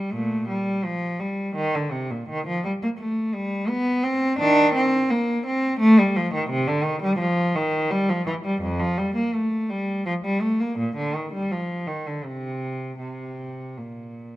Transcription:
0.00 0.11 G3 medium
0.12 0.46 A#2 medium
0.12 0.48 A3 medium
0.48 0.84 G3 medium
0.84 1.20 F3 medium
1.20 1.56 G3 medium
1.56 1.74 D#3 loud
1.75 1.92 D3 medium
1.91 2.09 C3 medium
2.11 2.28 A#2 medium
2.29 2.46 D#3 medium
2.47 2.64 F3 medium
2.65 2.72 G3 medium
2.83 2.89 A#3 medium
2.98 3.33 A3 medium
3.34 3.69 G3 medium
3.68 4.04 B3 loud
4.03 4.39 C4 loud
4.39 4.72 D#3 medium
4.39 4.74 D4 loud
4.75 5.10 C4 loud
5.10 5.45 A#3 loud
5.47 5.80 C4 loud
5.80 5.97 A3 loud
5.99 6.16 G3 loud
6.16 6.33 F3 medium
6.34 6.51 D#3 medium
6.50 6.67 C3 loud
6.67 6.85 D3 loud
6.83 7.02 D#3 medium
7.03 7.20 G3 loud
7.19 7.55 F3 loud
7.55 7.91 D#3 loud
7.91 8.09 G3 loud
8.09 8.27 F3 medium
8.26 8.34 E3 medium
8.45 8.63 G3 medium
8.62 8.80 F2 loud
8.80 8.98 F3 loud
8.98 9.16 G3 medium
9.15 9.33 A#3 medium
9.34 9.70 A3 medium
9.70 10.06 G3 medium
10.06 10.13 F3 loud
10.25 10.42 G3 medium
10.41 10.60 A3 medium
10.60 10.78 A#3 medium
10.78 10.96 A#2 medium
10.96 11.14 D3 medium
11.15 11.32 D#3 medium
11.33 11.50 G3 medium
11.51 11.87 F3 medium
11.87 12.05 D#3 medium
12.07 12.24 D3 medium
12.25 12.98 C3 medium
12.99 13.75 C3 medium
13.78 14.36 A#2 medium

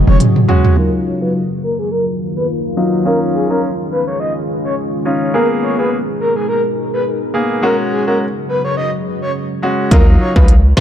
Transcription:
0.00 0.75 C#3 medium
0.00 0.75 F#3 medium
0.00 0.73 G#3 medium
0.00 0.75 F#4 medium
0.00 0.73 G#4 medium
0.07 0.19 F1 loud
0.07 0.18 C#5 medium
0.07 mid tom medium
0.20 closed hi-hat medium
0.20 mid tom medium
0.36 mid tom medium
0.48 0.75 G#3 medium
0.48 0.75 C#4 medium
0.48 0.75 F#4 medium
0.48 floor tom loud
0.64 floor tom loud
0.77 5.30 D#3 medium
0.77 1.18 F#3 medium
0.77 3.03 F#3 medium
0.77 3.03 A#3 medium
0.77 1.18 D#4 medium
0.77 5.30 F4 medium
0.77 1.18 F4 loud
0.77 0.90 A#4 loud
0.77 3.03 A#4 medium
1.06 1.19 C#5 medium
1.21 1.37 F#3 medium
1.21 1.37 D#4 medium
1.21 1.38 F4 medium
1.21 1.32 B4 medium
1.63 1.76 A#4 medium
1.79 1.89 G#4 medium
1.91 2.05 A#4 medium
2.36 2.47 B4 medium
2.77 3.04 F#3 medium
2.77 3.04 D#4 medium
2.77 3.04 F4 medium
3.05 9.87 G#3 medium
3.05 3.46 C#4 medium
3.05 5.32 C#4 medium
3.05 3.46 D#4 medium
3.05 3.47 F4 loud
3.05 9.87 G#4 medium
3.05 3.19 A#4 loud
3.34 3.48 G#4 medium
3.50 3.66 C#4 medium
3.50 3.66 D#4 medium
3.50 3.66 F4 medium
3.50 3.61 A#4 medium
3.91 4.05 B4 medium
4.07 4.18 C#5 medium
4.20 4.33 D#5 medium
4.65 4.75 C#5 medium
5.05 5.32 C#4 medium
5.05 5.32 D#4 medium
5.05 5.32 F4 medium
5.34 7.61 B2 medium
5.34 5.75 A#3 medium
5.34 5.75 B3 medium
5.34 7.61 D#4 medium
5.34 5.75 G#4 loud
5.34 7.61 A#4 medium
5.34 5.48 A#4 loud
5.63 5.76 C#5 medium
5.78 5.94 A#3 medium
5.78 5.95 B3 medium
5.78 5.95 G#4 medium
5.78 5.89 B4 medium
6.20 6.33 A#4 medium
6.36 6.46 G#4 medium
6.49 6.62 A#4 medium
6.93 7.04 B4 medium
7.34 7.61 A#3 medium
7.34 7.61 B3 medium
7.34 7.61 G#4 medium
7.62 9.89 C#3 medium
7.62 9.89 F#3 medium
7.62 8.03 G#3 medium
7.62 8.04 C#4 medium
7.62 9.89 F#4 medium
7.62 8.04 F#4 loud
7.62 7.76 A#4 loud
7.91 8.05 G#4 medium
8.07 8.23 G#3 medium
8.07 8.23 C#4 medium
8.07 8.23 F#4 medium
8.07 8.18 A#4 medium
8.49 8.62 B4 medium
8.65 8.75 C#5 medium
8.77 8.90 D#5 medium
9.22 9.32 C#5 medium
9.62 9.89 G#3 medium
9.62 9.89 C#4 medium
9.62 9.90 F#4 medium
9.91 10.17 D#2 loud
9.91 10.32 F#3 loud
9.91 10.32 D#4 medium
9.91 10.32 F4 loud
9.91 10.05 A#4 loud
9.91 kick loud
9.91 closed hi-hat medium
10.20 10.33 C#5 medium
10.36 10.73 C#2 medium
10.36 10.52 F#3 medium
10.36 10.52 D#4 medium
10.36 10.52 F4 medium
10.36 10.46 B4 medium
10.36 kick medium
10.48 closed hi-hat medium
10.77 10.80 D#2 loud
10.77 10.80 A#4 medium
10.77 cross-stick loud
10.77 snare loud

